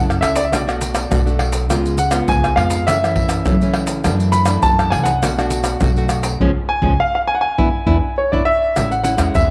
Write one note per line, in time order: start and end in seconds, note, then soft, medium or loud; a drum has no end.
0.00 0.19 F#2 medium
0.00 0.49 C#3 medium
0.00 0.17 C#4 medium
0.00 0.17 E4 medium
0.00 0.18 A4 medium
0.10 pandeiro soft
0.10 tamborim medium
0.10 maracas soft
0.21 0.53 C#2 medium
0.21 0.39 C#4 medium
0.21 0.40 E4 medium
0.21 0.40 A4 medium
0.21 0.36 E5 medium
0.21 pandeiro medium
0.21 tamborim medium
0.21 maracas medium
0.36 0.43 D5 medium
0.36 pandeiro medium
0.36 maracas medium
0.45 0.52 E5 medium
0.52 1.03 B1 medium
0.52 1.08 B2 medium
0.52 0.61 A3 medium
0.52 0.61 D4 medium
0.52 0.61 F#4 medium
0.52 1.37 D5 medium
0.52 pandeiro medium
0.52 tamborim medium
0.52 maracas medium
0.52 surdo medium
0.67 1.06 A3 medium
0.67 1.07 D4 medium
0.67 1.07 F#4 medium
0.67 pandeiro soft
0.67 tamborim medium
0.67 maracas soft
0.81 pandeiro medium
0.81 maracas medium
0.95 pandeiro medium
0.95 tamborim medium
0.95 maracas medium
1.10 1.70 B1 medium
1.10 1.67 F#3 medium
1.10 1.21 A3 medium
1.10 1.21 D4 medium
1.10 1.21 F#4 medium
1.10 pandeiro medium
1.10 tamborim medium
1.10 maracas medium
1.10 surdo loud
1.26 1.65 A3 medium
1.26 1.65 D4 medium
1.26 1.66 F#4 medium
1.26 pandeiro soft
1.26 maracas soft
1.39 pandeiro medium
1.39 tamborim medium
1.52 pandeiro medium
1.52 maracas medium
1.69 2.20 C#2 loud
1.69 2.26 C#3 medium
1.69 1.98 G#3 medium
1.69 1.98 B3 medium
1.69 1.98 F4 medium
1.69 pandeiro medium
1.69 tamborim medium
1.69 maracas medium
1.69 surdo medium
1.86 pandeiro soft
1.86 maracas soft
1.98 2.26 F#5 medium
1.98 pandeiro medium
1.98 maracas medium
2.11 2.52 G#3 medium
2.11 2.52 B3 medium
2.11 2.52 F4 medium
2.11 pandeiro medium
2.11 tamborim medium
2.11 maracas medium
2.28 2.54 C#2 medium
2.28 2.85 G#2 medium
2.28 2.56 G#5 medium
2.28 pandeiro medium
2.28 maracas medium
2.28 surdo loud
2.44 pandeiro soft
2.44 tamborim medium
2.44 maracas soft
2.56 2.87 F2 medium
2.56 2.85 G#3 medium
2.56 2.85 B3 medium
2.56 2.85 F4 medium
2.56 2.87 F5 medium
2.56 pandeiro medium
2.56 tamborim medium
2.70 pandeiro medium
2.70 maracas medium
2.87 3.37 F#2 medium
2.87 3.43 F#2 medium
2.87 2.97 E3 medium
2.87 2.97 A3 medium
2.87 2.97 C#4 medium
2.87 3.71 E5 medium
2.87 pandeiro medium
2.87 tamborim medium
2.87 maracas medium
2.87 surdo medium
3.04 3.42 E3 medium
3.04 3.43 A3 medium
3.04 3.43 C#4 medium
3.04 pandeiro soft
3.04 tamborim medium
3.04 maracas soft
3.16 pandeiro medium
3.16 surdo medium
3.29 pandeiro medium
3.29 tamborim medium
3.29 maracas medium
3.46 4.02 C#3 medium
3.46 3.55 E3 medium
3.46 4.07 F#3 loud
3.46 3.56 A3 medium
3.46 3.56 C#4 medium
3.46 pandeiro medium
3.46 tamborim medium
3.46 maracas medium
3.46 surdo loud
3.61 4.01 E3 medium
3.61 4.01 A3 medium
3.61 4.01 C#4 medium
3.61 pandeiro soft
3.61 maracas soft
3.74 pandeiro medium
3.74 tamborim medium
3.87 pandeiro medium
3.87 maracas medium
4.04 4.61 F#2 medium
4.04 4.55 F#2 loud
4.04 4.44 E3 medium
4.04 4.45 A3 medium
4.04 4.45 D4 medium
4.04 pandeiro medium
4.04 tamborim medium
4.04 maracas medium
4.04 surdo medium
4.20 pandeiro soft
4.20 maracas soft
4.32 4.61 B5 loud
4.32 pandeiro medium
4.32 maracas medium
4.46 4.88 E3 medium
4.46 4.88 A3 medium
4.46 4.88 D4 medium
4.46 pandeiro medium
4.46 tamborim medium
4.46 maracas medium
4.63 5.20 F#2 medium
4.63 4.89 F#2 medium
4.63 4.91 A5 loud
4.63 pandeiro medium
4.63 maracas medium
4.63 surdo loud
4.79 pandeiro soft
4.79 tamborim medium
4.79 maracas soft
4.90 5.23 C2 medium
4.90 5.10 E3 medium
4.90 5.10 A3 medium
4.90 5.10 D4 medium
4.90 5.07 G#5 medium
4.90 pandeiro medium
4.90 tamborim medium
5.03 6.05 F#5 medium
5.03 pandeiro medium
5.03 maracas medium
5.22 5.73 B1 loud
5.22 5.79 B2 medium
5.22 5.33 A3 medium
5.22 5.33 D4 medium
5.22 5.33 F#4 medium
5.22 pandeiro medium
5.22 tamborim medium
5.22 maracas medium
5.22 surdo medium
5.38 5.77 A3 medium
5.38 5.78 D4 medium
5.38 5.78 F#4 medium
5.38 pandeiro soft
5.38 tamborim medium
5.38 maracas soft
5.50 pandeiro medium
5.50 maracas medium
5.64 pandeiro medium
5.64 tamborim medium
5.64 maracas medium
5.81 6.40 B1 medium
5.81 6.38 F#2 medium
5.81 5.91 A3 medium
5.81 5.91 D4 medium
5.81 5.91 F#4 medium
5.81 pandeiro medium
5.81 tamborim medium
5.81 maracas medium
5.81 surdo loud
5.96 6.36 A3 medium
5.96 6.37 D4 medium
5.96 6.37 F#4 medium
5.96 pandeiro soft
5.96 maracas soft
6.09 pandeiro medium
6.09 tamborim medium
6.09 maracas medium
6.23 pandeiro medium
6.23 maracas medium
6.40 6.52 C#2 loud
6.40 6.50 F3 medium
6.40 6.50 G#3 medium
6.40 6.50 C#4 loud
6.40 surdo loud
6.69 6.97 G#5 loud
6.82 6.94 C#2 medium
6.82 6.93 F3 medium
6.82 6.93 G#3 loud
6.82 6.93 C#4 loud
6.82 surdo loud
7.00 7.14 F5 loud
7.15 7.20 F5 medium
7.27 7.35 G#5 loud
7.35 7.42 F#5 medium
7.41 8.13 G#5 medium
7.58 7.70 E2 medium
7.58 7.68 B3 medium
7.58 7.68 D4 medium
7.58 7.68 E4 loud
7.58 surdo loud
7.86 7.98 E2 medium
7.86 7.97 B3 medium
7.86 7.97 D4 loud
7.86 7.97 E4 loud
7.86 surdo loud
8.18 8.31 C#5 medium
8.32 8.44 E2 medium
8.32 8.42 B3 medium
8.32 8.42 D4 medium
8.32 8.42 E4 medium
8.32 8.47 D5 medium
8.32 surdo medium
8.45 8.92 E5 loud
8.76 9.14 A1 medium
8.76 9.33 A2 medium
8.76 8.94 G#3 medium
8.76 8.94 C#4 medium
8.76 8.94 E4 medium
8.76 pandeiro medium
8.76 tamborim medium
8.76 maracas medium
8.76 surdo medium
8.91 9.02 F#5 medium
8.91 pandeiro soft
8.91 maracas soft
9.04 9.15 G#3 medium
9.04 9.15 C#4 medium
9.04 9.16 E4 medium
9.04 9.35 F#5 medium
9.04 pandeiro medium
9.04 maracas medium
9.17 9.32 E2 medium
9.17 9.51 G#3 medium
9.17 9.51 C#4 medium
9.17 9.51 E4 medium
9.17 pandeiro medium
9.17 tamborim medium
9.17 maracas medium
9.17 surdo soft
9.35 9.51 E2 medium
9.35 9.51 E3 medium
9.35 9.51 E5 medium
9.35 pandeiro medium
9.35 maracas medium
9.35 surdo medium